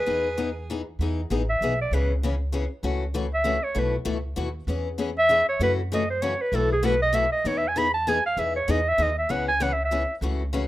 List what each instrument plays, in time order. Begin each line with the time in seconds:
Already playing: violin G#4, clarinet B4
0.06 upright bass E2, steel-string acoustic guitar E3 B3 D#4 G#4
0.38 steel-string acoustic guitar E3 B3 D#4 G#4
0.70 steel-string acoustic guitar E3 B3 D#4 G#4
0.99 upright bass E2, steel-string acoustic guitar E3 B3 D#4 G#4
1.30 upright bass A1, steel-string acoustic guitar E3 B3 D#4 G#4
1.50 clarinet E5
1.61 upright bass B1, steel-string acoustic guitar E3 B3 D#4 G#4
1.81 clarinet D5
1.91 upright bass C#2, steel-string acoustic guitar C#3 E3 B3 C#4 G#4, clarinet B4
2.23 steel-string acoustic guitar C#3 E3 B3 C#4 G#4
2.52 steel-string acoustic guitar C#3 E3 B3 C#4 G#4
2.83 upright bass C#2, steel-string acoustic guitar C#3 E3 A3 C#4 F#4
3.14 steel-string acoustic guitar C#3 E3 A3 C#4 F#4
3.34 clarinet E5
3.44 steel-string acoustic guitar C#3 E3 A3 C#4 F#4
3.64 clarinet C#5
3.75 upright bass B1, steel-string acoustic guitar B2 E3 A3 E4 F#4
3.79 clarinet B4
4.05 upright bass C#2, steel-string acoustic guitar B2 E3 A3 E4 F#4
4.36 upright bass D#2, steel-string acoustic guitar B2 E3 A3 E4 F#4
4.67 upright bass E2, steel-string acoustic guitar E3 B3 C#4 G#4
4.98 steel-string acoustic guitar E3 B3 C#4 G#4
5.19 clarinet E5
5.29 steel-string acoustic guitar E3 B3 C#4 G#4
5.49 clarinet C#5
5.60 upright bass F#2, steel-string acoustic guitar C#3 E3 A3 C#4 F#4, clarinet B4
5.92 steel-string acoustic guitar C#3 E3 A3 C#4 F#4, clarinet D#5
6.10 clarinet C5
6.22 steel-string acoustic guitar C#3 E3 A3 C#4 F#4, clarinet C#5
6.41 clarinet B4
6.52 upright bass B1, steel-string acoustic guitar B2 E3 A3 E4 F#4, clarinet A4
6.72 clarinet G#4
6.83 steel-string acoustic guitar B2 E3 A3 E4 F#4, clarinet B4
7.02 clarinet D#5
7.13 steel-string acoustic guitar B2 E3 A3 E4 F#4, clarinet E5
7.32 clarinet D#5
7.45 upright bass E2, steel-string acoustic guitar E3 B3 D#4 G#4, clarinet C#5
7.58 clarinet E5
7.68 clarinet G#5
7.76 steel-string acoustic guitar E3 B3 D#4 G#4, clarinet B5
7.94 clarinet A5
8.07 steel-string acoustic guitar E3 B3 D#4 G#4, clarinet G#5
8.26 clarinet F5
8.37 upright bass E2, steel-string acoustic guitar E3 B3 D#4 G#4, clarinet E5
8.56 clarinet C#5
8.68 upright bass E2, steel-string acoustic guitar E3 B3 D#4 G#4, clarinet D#5
8.89 clarinet E5
8.98 upright bass D#2, steel-string acoustic guitar E3 B3 D#4 G#4
9.03 clarinet D#5
9.18 clarinet E5
9.29 upright bass C#2, steel-string acoustic guitar C#3 E3 B3 C#4 G#4, clarinet F#5
9.48 clarinet G#5
9.60 steel-string acoustic guitar C#3 E3 B3 C#4 G#4, clarinet F#5
9.73 clarinet E5
9.85 clarinet E5
9.91 steel-string acoustic guitar C#3 E3 B3 C#4 G#4
10.21 upright bass C#2, steel-string acoustic guitar C#3 E3 A3 C#4 F#4
10.53 steel-string acoustic guitar C#3 E3 A3 C#4 F#4